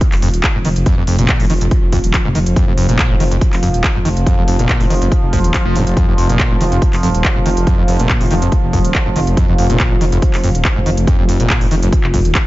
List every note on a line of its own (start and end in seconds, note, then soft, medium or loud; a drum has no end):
0.00 12.47 F3 medium
0.00 kick loud
0.00 closed hi-hat medium
0.12 0.21 F1 medium
0.12 clap soft
0.12 open hi-hat medium
0.22 0.32 F1 loud
0.22 0.29 F2 medium
0.22 open hi-hat loud
0.34 0.42 D#1 medium
0.34 closed hi-hat medium
0.44 kick loud
0.44 clap loud
0.44 closed hi-hat medium
0.55 0.63 F1 medium
0.55 0.58 G#2 medium
0.65 0.74 F1 medium
0.65 0.69 D#3 loud
0.65 open hi-hat loud
0.76 0.84 F1 medium
0.76 closed hi-hat medium
0.86 0.96 F2 medium
0.86 kick loud
0.86 closed hi-hat medium
0.97 1.06 F1 medium
0.97 1.03 F2 medium
1.07 1.17 F1 medium
1.07 1.17 F2 medium
1.07 open hi-hat loud
1.19 1.27 F1 loud
1.19 1.42 A#2 medium
1.19 closed hi-hat medium
1.29 kick loud
1.29 clap loud
1.29 closed hi-hat medium
1.40 1.48 F1 medium
1.40 1.46 G#2 loud
1.40 open hi-hat medium
1.50 1.59 F1 loud
1.50 1.54 D#3 loud
1.50 open hi-hat loud
1.61 1.69 F1 medium
1.61 1.67 F2 medium
1.61 closed hi-hat medium
1.71 kick loud
1.71 closed hi-hat medium
1.83 1.91 F1 medium
1.93 2.02 F1 loud
1.93 1.99 F2 loud
1.93 kick medium
1.93 open hi-hat loud
2.04 2.12 D#1 medium
2.04 closed hi-hat medium
2.14 kick loud
2.14 clap loud
2.14 closed hi-hat medium
2.25 2.33 F1 medium
2.25 2.28 G#2 medium
2.35 2.44 F1 loud
2.35 2.39 D#3 loud
2.35 open hi-hat loud
2.46 2.55 F1 medium
2.46 closed hi-hat medium
2.56 2.66 F2 medium
2.56 kick loud
2.56 closed hi-hat medium
2.67 2.76 F1 medium
2.67 2.73 F2 medium
2.77 2.87 F1 loud
2.77 2.87 F2 medium
2.77 open hi-hat loud
2.89 2.97 F1 medium
2.89 3.12 A#2 medium
2.89 closed hi-hat medium
2.99 kick loud
2.99 clap loud
2.99 closed hi-hat medium
3.10 3.18 F1 medium
3.10 3.16 G#2 loud
3.20 3.29 F1 loud
3.20 3.24 D#3 loud
3.20 open hi-hat loud
3.31 3.40 F1 medium
3.31 3.37 F2 medium
3.31 closed hi-hat medium
3.41 kick loud
3.41 closed hi-hat medium
3.53 3.61 F1 medium
3.53 clap soft
3.53 open hi-hat medium
3.63 3.72 F1 loud
3.63 3.69 F2 loud
3.63 open hi-hat loud
3.74 3.82 D#1 medium
3.74 closed hi-hat medium
3.84 kick loud
3.84 clap loud
3.84 closed hi-hat medium
3.95 4.03 F1 medium
3.95 3.99 G#2 medium
4.05 4.14 F1 medium
4.05 4.09 D#3 loud
4.05 open hi-hat loud
4.17 4.25 F1 medium
4.17 closed hi-hat medium
4.26 4.36 F2 medium
4.26 kick loud
4.26 closed hi-hat medium
4.38 4.46 F1 medium
4.38 4.43 F2 medium
4.48 4.57 F1 loud
4.48 4.57 F2 medium
4.48 open hi-hat loud
4.59 4.67 F1 medium
4.59 4.82 A#2 medium
4.59 closed hi-hat medium
4.69 kick loud
4.69 clap loud
4.69 closed hi-hat medium
4.80 4.89 F1 medium
4.80 4.86 G#2 loud
4.80 open hi-hat medium
4.90 5.00 F1 loud
4.90 4.94 D#3 loud
4.90 open hi-hat loud
5.02 5.10 F1 loud
5.02 5.07 F2 medium
5.02 closed hi-hat medium
5.12 kick loud
5.12 closed hi-hat medium
5.23 5.31 F1 medium
5.33 5.42 F1 loud
5.33 5.39 F3 medium
5.33 kick medium
5.33 open hi-hat loud
5.44 5.53 D#1 medium
5.44 closed hi-hat medium
5.54 kick loud
5.54 clap loud
5.54 closed hi-hat medium
5.66 5.74 F1 medium
5.66 5.77 F3 medium
5.76 5.85 F1 loud
5.76 5.85 F2 loud
5.76 open hi-hat loud
5.87 5.95 F1 medium
5.87 closed hi-hat medium
5.97 6.06 F2 medium
5.97 kick loud
5.97 closed hi-hat medium
6.08 6.16 F1 medium
6.08 6.14 F2 medium
6.18 6.27 F1 loud
6.18 6.27 F2 medium
6.18 open hi-hat loud
6.29 6.38 F1 loud
6.29 6.52 A#2 medium
6.29 closed hi-hat medium
6.39 kick loud
6.39 clap loud
6.39 closed hi-hat medium
6.51 6.59 F1 medium
6.51 6.56 G#2 loud
6.61 6.70 F1 loud
6.61 6.64 D#3 loud
6.61 open hi-hat loud
6.72 6.80 F1 medium
6.72 6.77 F2 medium
6.72 closed hi-hat medium
6.82 kick loud
6.82 closed hi-hat medium
6.93 7.01 F1 medium
6.93 clap soft
6.93 open hi-hat medium
7.03 7.12 F1 medium
7.03 7.09 F2 loud
7.03 open hi-hat loud
7.15 7.23 D#1 medium
7.15 closed hi-hat medium
7.24 kick loud
7.24 clap loud
7.24 closed hi-hat medium
7.36 7.44 F1 medium
7.36 7.39 G#2 medium
7.46 7.55 F1 medium
7.46 7.49 D#3 loud
7.46 open hi-hat loud
7.57 7.65 F1 medium
7.57 closed hi-hat medium
7.67 7.76 F2 medium
7.67 kick loud
7.67 closed hi-hat medium
7.78 7.86 F1 medium
7.78 7.84 F2 medium
7.88 7.97 F1 loud
7.88 7.98 F2 medium
7.88 open hi-hat loud
7.99 8.08 F1 loud
7.99 8.22 A#2 medium
7.99 closed hi-hat medium
8.10 kick loud
8.10 clap loud
8.10 closed hi-hat medium
8.21 8.29 F1 medium
8.21 8.26 G#2 loud
8.21 open hi-hat medium
8.31 8.40 F1 loud
8.31 8.35 D#3 loud
8.31 open hi-hat loud
8.42 8.50 F1 medium
8.42 8.48 F2 medium
8.42 closed hi-hat medium
8.52 kick loud
8.52 closed hi-hat medium
8.63 8.72 F1 medium
8.73 8.83 F1 loud
8.73 8.80 F2 loud
8.73 kick medium
8.73 open hi-hat loud
8.85 8.93 D#1 medium
8.85 closed hi-hat medium
8.95 kick loud
8.95 clap loud
8.95 closed hi-hat medium
9.06 9.14 F1 medium
9.06 9.09 G#2 medium
9.16 9.25 F1 medium
9.16 9.20 D#3 loud
9.16 open hi-hat loud
9.27 9.35 F1 medium
9.27 closed hi-hat medium
9.37 9.47 F2 medium
9.37 kick loud
9.37 closed hi-hat medium
9.48 9.57 F1 medium
9.48 9.54 F2 medium
9.58 9.68 F1 loud
9.58 9.68 F2 medium
9.58 open hi-hat loud
9.70 9.78 F1 loud
9.70 9.93 A#2 medium
9.70 closed hi-hat medium
9.80 kick loud
9.80 clap loud
9.80 closed hi-hat medium
9.91 9.99 F1 medium
9.91 9.97 G#2 loud
10.01 10.10 F1 loud
10.01 10.05 D#3 loud
10.01 open hi-hat medium
10.12 10.20 F1 medium
10.12 10.18 F2 medium
10.12 closed hi-hat medium
10.22 kick loud
10.22 closed hi-hat medium
10.34 10.42 F1 medium
10.34 clap soft
10.34 open hi-hat medium
10.44 10.53 F1 loud
10.44 10.50 F2 loud
10.44 open hi-hat loud
10.55 10.63 D#1 medium
10.55 closed hi-hat medium
10.65 kick loud
10.65 clap loud
10.65 closed hi-hat medium
10.76 10.84 F1 medium
10.76 10.79 G#2 medium
10.86 10.95 F1 loud
10.86 10.90 D#3 loud
10.86 open hi-hat medium
10.97 11.06 F1 medium
10.97 closed hi-hat medium
11.07 11.17 F2 medium
11.07 kick loud
11.07 closed hi-hat medium
11.19 11.27 F1 medium
11.19 11.24 F2 medium
11.29 11.38 F1 loud
11.29 11.38 F2 medium
11.29 open hi-hat loud
11.40 11.48 F1 medium
11.40 11.63 A#2 medium
11.40 closed hi-hat medium
11.50 kick loud
11.50 clap loud
11.50 closed hi-hat medium
11.61 11.70 F1 medium
11.61 11.67 G#2 loud
11.61 open hi-hat medium
11.71 11.81 F1 loud
11.71 11.75 D#3 loud
11.71 open hi-hat loud
11.82 11.91 F1 medium
11.82 11.88 F2 medium
11.82 closed hi-hat medium
11.92 kick loud
11.92 closed hi-hat medium
12.04 12.12 F1 medium
12.04 clap soft
12.14 12.23 F1 loud
12.14 12.20 F2 medium
12.14 kick medium
12.14 open hi-hat loud
12.25 12.33 D#1 medium
12.25 closed hi-hat medium
12.35 kick loud
12.35 clap loud
12.35 closed hi-hat medium